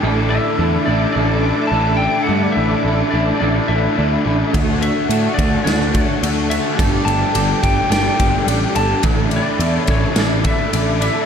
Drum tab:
RD |--------|--------|xxxxxxxx|xxxxxxxx|
SD |--------|--------|----o---|----o---|
BD |--------|--------|o--o-o--|o--o-o--|

RD |xxxxxxxx|
SD |----o---|
BD |o--o-o--|